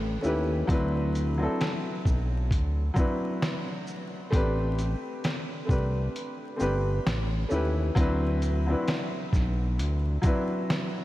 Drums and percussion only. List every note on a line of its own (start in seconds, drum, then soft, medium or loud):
0.24 shaker soft
0.69 kick loud
0.69 closed hi-hat medium
1.15 closed hi-hat soft
1.15 shaker soft
1.61 snare loud
1.61 closed hi-hat medium
2.06 kick medium
2.06 shaker soft
2.51 kick medium
2.51 closed hi-hat medium
2.96 kick medium
2.96 shaker soft
3.42 snare loud
3.42 closed hi-hat medium
3.87 shaker soft
4.32 kick loud
4.32 closed hi-hat medium
4.79 closed hi-hat soft
4.79 shaker soft
5.24 snare loud
5.24 closed hi-hat medium
5.69 kick medium
5.69 shaker soft
6.16 closed hi-hat medium
6.60 shaker medium
7.07 snare loud
7.07 closed hi-hat medium
7.51 shaker soft
7.96 kick loud
7.96 closed hi-hat medium
8.42 closed hi-hat soft
8.42 shaker soft
8.88 snare loud
8.88 closed hi-hat medium
9.33 kick medium
9.33 snare soft
9.33 shaker soft
9.79 closed hi-hat medium
10.23 kick medium
10.23 closed hi-hat medium
10.23 shaker medium
10.70 snare loud
10.70 closed hi-hat medium